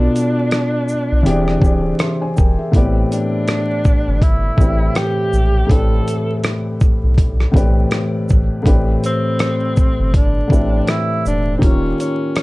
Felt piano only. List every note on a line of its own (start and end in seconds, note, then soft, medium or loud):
0.00 0.87 B2 medium
0.00 0.88 B3 medium
0.00 0.88 F4 medium
0.00 0.89 A4 medium
0.00 0.90 D5 medium
1.23 1.55 E3 loud
1.23 1.56 C4 medium
1.23 1.57 G4 medium
1.27 1.57 G#4 medium
1.27 1.58 D5 loud
1.60 2.46 E3 medium
1.60 2.47 C4 medium
1.60 1.99 G4 medium
1.64 2.00 G#4 medium
1.64 2.01 D5 medium
1.99 2.21 E5 soft
1.99 2.20 C6 medium
2.22 2.36 C5 medium
2.22 2.36 G#5 medium
2.36 2.58 A#4 medium
2.36 2.57 G5 medium
2.59 2.94 G#4 medium
2.59 2.94 E5 medium
2.72 3.84 A2 medium
2.72 3.84 E3 medium
2.72 2.81 B3 medium
2.72 3.86 G4 medium
2.76 3.86 B4 medium
2.76 3.87 D5 loud
2.81 3.88 C4 medium
4.57 5.43 A2 medium
4.57 5.44 E3 medium
4.57 5.44 C4 medium
4.57 5.45 G4 medium
4.61 5.45 B4 medium
4.61 4.68 D5 medium
4.69 5.49 E5 medium
5.67 6.80 A2 medium
5.67 6.80 E3 medium
5.67 6.81 C4 medium
5.67 6.81 G4 medium
5.71 6.82 B4 medium
5.71 6.83 D5 medium
7.52 8.39 A2 medium
7.52 8.39 E3 medium
7.52 8.40 C4 medium
7.52 8.40 G4 medium
7.56 8.41 B4 medium
7.56 8.41 D5 medium
8.63 9.76 A2 medium
8.63 9.76 E3 medium
8.63 9.77 C4 medium
8.63 9.78 G4 medium
8.67 9.78 B4 medium
8.67 9.78 D5 medium
10.48 11.35 A2 medium
10.48 11.35 E3 medium
10.48 11.36 C4 medium
10.48 11.36 G4 medium
10.52 11.37 B4 medium
10.52 11.38 E5 medium
11.59 12.43 D#3 medium
11.59 12.43 A#3 medium
11.59 12.43 F4 medium
11.64 12.43 G4 medium
11.64 12.43 C#5 medium